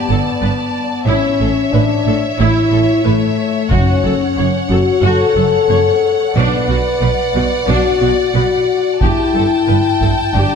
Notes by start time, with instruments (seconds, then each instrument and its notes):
Already playing: french horn section B3, violin section D5 A5
0.09 double bass section G1, cello section G2, viola section A4
0.42 double bass section G1, cello section G2, viola section B4
1.07 double bass section A1, cello section A2, french horn section C#4, viola section E4, violin section C#5 E5
1.40 double bass section A1, cello section A2, viola section A4
1.71 double bass section A1, cello section A2, french horn section D4, viola section B4
2.07 double bass section A1, cello section A2, viola section A4
2.38 double bass section A1, cello section A2, french horn section E4, viola section E4
2.72 double bass section A1, cello section A2, viola section A4
3.04 double bass section A1, cello section A2, french horn section A3, viola section B4
3.71 double bass section F#1, cello section F#2, timpani F#2, french horn section C#4, viola section F#4, violin section F#5, taiko
4.04 double bass section F#1, cello section F#2, viola section A4
4.37 double bass section F#1, cello section F#2, viola section C#5
4.69 double bass section F#1, cello section F#2, french horn section F#4, viola section A4
5.02 double bass section F#1, cello section F#2, viola section F#4, french horn section A4
5.36 double bass section F#1, cello section F#2, viola section A4
5.69 double bass section F#1, cello section F#2, viola section C#5
6.35 double bass section B1, timpani B2, cello section B2, viola section D4, violin section D5
6.68 double bass section B1, cello section B2, viola section F#4
7.01 double bass section B1, cello section B2, viola section B4
7.35 double bass section B1, cello section B2, viola section F#4
7.68 double bass section B1, cello section B2, viola section D4, french horn section F#4
8.01 double bass section B1, cello section B2, viola section F#4
8.34 double bass section B1, cello section B2, french horn section F#4, viola section B4
9.01 double bass section G1, cello section G2, french horn section E4, viola section G4, violin section G5 A5, taiko
9.34 double bass section G1, cello section G2, viola section A4
9.67 double bass section G1, cello section G2, viola section B4
10.01 double bass section G1, cello section G2, viola section A4, taiko
10.33 double bass section G1, cello section G2, french horn section D4, viola section G4